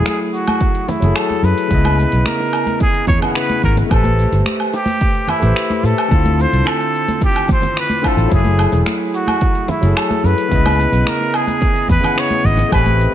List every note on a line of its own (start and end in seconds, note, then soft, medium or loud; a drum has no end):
0.00 0.98 F#3 medium
0.00 1.01 A3 medium
0.00 0.99 E4 medium
0.00 1.00 G#4 medium
0.06 0.20 G#4 medium
0.06 finger snap loud
0.06 open hi-hat medium
0.06 high conga medium
0.06 cabasa soft
0.33 0.90 F#4 medium
0.33 cabasa medium
0.48 open hi-hat soft
0.48 high bongo medium
0.48 high conga medium
0.48 cabasa soft
0.48 low woodblock medium
0.61 kick loud
0.61 open hi-hat soft
0.61 cabasa soft
0.75 open hi-hat soft
0.88 1.18 E4 medium
0.88 high bongo medium
0.88 high conga medium
0.88 low conga medium
0.88 cabasa medium
1.00 1.11 F#1 medium
1.00 1.67 F#3 medium
1.00 1.67 E4 medium
1.00 1.69 G#4 medium
1.00 open hi-hat soft
1.00 low conga medium
1.00 cabasa soft
1.06 1.70 A4 medium
1.16 1.46 A4 loud
1.16 finger snap loud
1.16 open hi-hat medium
1.16 cabasa soft
1.16 low woodblock medium
1.30 open hi-hat soft
1.30 high conga medium
1.43 1.52 F#2 medium
1.43 2.28 B4 loud
1.43 high bongo soft
1.43 cabasa medium
1.58 open hi-hat soft
1.58 cabasa soft
1.68 2.04 C#2 medium
1.68 3.17 C#3 medium
1.68 3.19 B3 medium
1.68 kick loud
1.68 open hi-hat medium
1.68 cabasa soft
1.72 3.20 E4 medium
1.72 3.22 D#5 medium
1.85 open hi-hat soft
1.85 high bongo medium
1.85 high conga medium
1.85 low woodblock medium
1.99 cabasa medium
2.12 2.21 B1 medium
2.12 open hi-hat soft
2.12 cabasa soft
2.25 2.80 A#4 loud
2.25 finger snap loud
2.25 open hi-hat medium
2.25 high conga medium
2.25 cabasa soft
2.40 high bongo soft
2.53 cabasa medium
2.53 low woodblock medium
2.66 open hi-hat soft
2.66 high conga medium
2.66 cabasa soft
2.80 3.07 G#4 loud
2.80 kick loud
2.80 open hi-hat medium
2.80 high bongo medium
2.80 cabasa soft
2.94 open hi-hat soft
3.07 3.17 E2 medium
3.07 3.20 C#5 loud
3.07 kick loud
3.07 high conga medium
3.07 low conga medium
3.07 cabasa medium
3.19 3.86 C#3 medium
3.19 3.87 B3 medium
3.19 open hi-hat soft
3.19 low conga medium
3.19 cabasa soft
3.19 low woodblock medium
3.23 3.88 E4 medium
3.23 3.89 F#5 medium
3.35 3.62 B4 loud
3.35 finger snap loud
3.35 open hi-hat medium
3.35 high bongo medium
3.35 cabasa soft
3.49 open hi-hat soft
3.49 high conga medium
3.63 3.81 G#1 loud
3.63 3.76 A#4 medium
3.63 kick medium
3.63 cabasa medium
3.77 open hi-hat soft
3.77 high bongo medium
3.77 cabasa soft
3.87 5.38 A3 medium
3.87 5.39 G4 medium
3.91 4.24 A1 medium
3.91 4.44 A4 loud
3.91 5.40 B4 medium
3.91 5.41 C5 medium
3.91 kick loud
3.91 open hi-hat medium
3.91 cabasa soft
3.91 low woodblock medium
4.04 open hi-hat soft
4.04 high conga medium
4.19 cabasa medium
4.32 4.41 G1 medium
4.32 open hi-hat soft
4.32 high bongo medium
4.32 cabasa soft
4.45 finger snap loud
4.45 open hi-hat medium
4.45 high conga medium
4.45 cabasa soft
4.60 low woodblock medium
4.74 5.31 G4 loud
4.74 high bongo medium
4.74 cabasa medium
4.86 open hi-hat soft
4.86 high conga loud
4.86 cabasa soft
5.01 kick loud
5.01 open hi-hat soft
5.01 cabasa soft
5.15 open hi-hat soft
5.27 5.86 E4 medium
5.27 high bongo medium
5.27 high conga medium
5.27 low conga medium
5.27 cabasa medium
5.27 low woodblock medium
5.39 5.51 A1 medium
5.39 6.06 A3 medium
5.39 6.08 G4 medium
5.39 open hi-hat soft
5.39 low conga medium
5.39 cabasa soft
5.44 6.09 B4 medium
5.44 6.10 C5 medium
5.56 finger snap loud
5.56 open hi-hat medium
5.56 cabasa soft
5.70 open hi-hat soft
5.70 high bongo medium
5.70 high conga medium
5.83 5.92 A2 medium
5.83 6.43 A4 loud
5.83 cabasa medium
5.98 open hi-hat soft
5.98 cabasa soft
5.98 low woodblock medium
6.08 6.44 D2 medium
6.08 7.59 D3 medium
6.08 7.60 C4 medium
6.08 kick loud
6.08 open hi-hat medium
6.12 7.61 E4 medium
6.12 7.62 F4 medium
6.12 cabasa soft
6.25 open hi-hat soft
6.25 high bongo soft
6.25 high conga medium
6.40 6.69 C5 loud
6.40 cabasa medium
6.53 6.61 C2 medium
6.53 open hi-hat soft
6.53 cabasa soft
6.64 7.22 A4 loud
6.64 finger snap loud
6.64 open hi-hat medium
6.64 high bongo medium
6.64 high conga medium
6.64 cabasa soft
6.64 low woodblock medium
6.81 open hi-hat soft
6.95 cabasa medium
7.08 open hi-hat soft
7.08 high conga loud
7.08 cabasa soft
7.21 7.48 G4 loud
7.21 kick loud
7.21 open hi-hat soft
7.21 high bongo soft
7.21 cabasa soft
7.36 open hi-hat soft
7.36 low woodblock medium
7.48 7.76 C5 medium
7.48 kick loud
7.48 high conga medium
7.48 low conga medium
7.48 cabasa medium
7.62 open hi-hat soft
7.62 high bongo medium
7.62 low conga medium
7.62 cabasa soft
7.77 8.09 B4 loud
7.77 finger snap loud
7.77 open hi-hat medium
7.77 cabasa soft
7.89 open hi-hat soft
7.89 high conga medium
8.01 8.27 D3 medium
8.01 8.28 C4 medium
8.01 8.28 E4 medium
8.01 8.29 F4 loud
8.01 kick medium
8.01 cabasa medium
8.01 low woodblock medium
8.08 8.33 A4 medium
8.17 8.26 A1 loud
8.17 open hi-hat soft
8.17 high bongo soft
8.17 cabasa soft
8.27 9.78 F#3 medium
8.27 9.79 E4 medium
8.27 high bongo soft
8.32 8.65 F#1 medium
8.32 9.82 A3 medium
8.32 9.81 G#4 medium
8.32 8.85 G#4 medium
8.32 kick loud
8.32 open hi-hat medium
8.32 cabasa soft
8.45 open hi-hat soft
8.45 high conga medium
8.59 cabasa medium
8.59 low woodblock medium
8.72 8.81 E1 medium
8.72 open hi-hat soft
8.72 high bongo medium
8.72 cabasa soft
8.86 finger snap medium
8.86 open hi-hat medium
8.86 high conga medium
8.86 cabasa soft
9.14 9.71 F#4 medium
9.14 cabasa medium
9.27 open hi-hat soft
9.27 high bongo soft
9.27 high conga medium
9.27 cabasa soft
9.27 low woodblock medium
9.41 kick loud
9.41 open hi-hat soft
9.41 cabasa soft
9.55 open hi-hat soft
9.68 9.98 E4 medium
9.68 high bongo medium
9.68 high conga medium
9.68 low conga medium
9.68 cabasa medium
9.81 9.91 F#1 medium
9.81 10.47 F#3 medium
9.81 10.48 E4 medium
9.81 open hi-hat soft
9.81 low conga medium
9.81 cabasa soft
9.85 10.49 G#4 medium
9.85 10.51 A4 medium
9.97 10.27 A4 loud
9.97 finger snap medium
9.97 open hi-hat medium
9.97 cabasa soft
9.97 low woodblock medium
10.10 open hi-hat soft
10.10 high conga medium
10.24 10.33 F#2 medium
10.24 11.10 B4 loud
10.24 high bongo soft
10.24 cabasa medium
10.38 open hi-hat soft
10.38 cabasa soft
10.48 10.85 C#2 medium
10.48 11.99 C#3 medium
10.48 12.00 B3 medium
10.48 kick loud
10.48 open hi-hat medium
10.48 cabasa soft
10.53 12.01 E4 medium
10.53 12.02 D#5 medium
10.66 open hi-hat soft
10.66 high bongo medium
10.66 high conga medium
10.66 low woodblock medium
10.80 cabasa medium
10.92 11.01 B1 medium
10.92 open hi-hat soft
10.92 cabasa soft
11.06 11.37 A#4 medium
11.06 finger snap loud
11.06 open hi-hat medium
11.06 high conga medium
11.06 cabasa soft
11.21 high bongo soft
11.34 11.90 G#4 loud
11.34 cabasa medium
11.34 low woodblock medium
11.47 open hi-hat soft
11.47 high conga medium
11.47 cabasa soft
11.61 kick loud
11.61 open hi-hat soft
11.61 high bongo medium
11.61 cabasa soft
11.76 open hi-hat soft
11.88 11.98 E2 loud
11.88 12.21 B4 loud
11.88 kick loud
11.88 high conga medium
11.88 low conga medium
11.88 cabasa medium
12.00 12.67 C#3 medium
12.00 12.68 B3 medium
12.00 low conga medium
12.04 12.69 E4 medium
12.04 12.70 F#5 medium
12.04 open hi-hat soft
12.04 cabasa soft
12.04 low woodblock medium
12.16 12.47 C#5 loud
12.16 finger snap loud
12.16 open hi-hat medium
12.16 high bongo soft
12.16 cabasa soft
12.30 open hi-hat soft
12.30 high conga medium
12.44 12.62 G#1 medium
12.44 12.72 D#5 loud
12.44 kick medium
12.44 cabasa medium
12.57 open hi-hat soft
12.57 high bongo medium
12.57 cabasa soft
12.69 13.05 A1 medium
12.69 13.14 A3 medium
12.69 13.14 G4 medium
12.69 kick loud
12.69 open hi-hat medium
12.69 low woodblock medium
12.73 13.14 C4 medium
12.73 13.14 B4 medium
12.73 13.14 B4 loud
12.73 cabasa soft
12.86 open hi-hat soft
12.86 high conga medium
13.00 cabasa medium